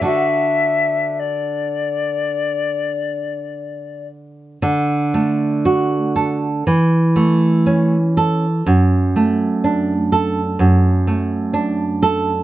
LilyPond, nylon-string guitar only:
\new Staff \with { instrumentName = "Nylon-string guitar" } { \time 4/4 \key d \major \tempo 4 = 60 <d d' fis'>1 | d8 a8 fis'8 a'8 e8 a8 cis'8 a'8 | fis,8 a8 d'8 a'8 fis,8 a8 d'8 a'8 | }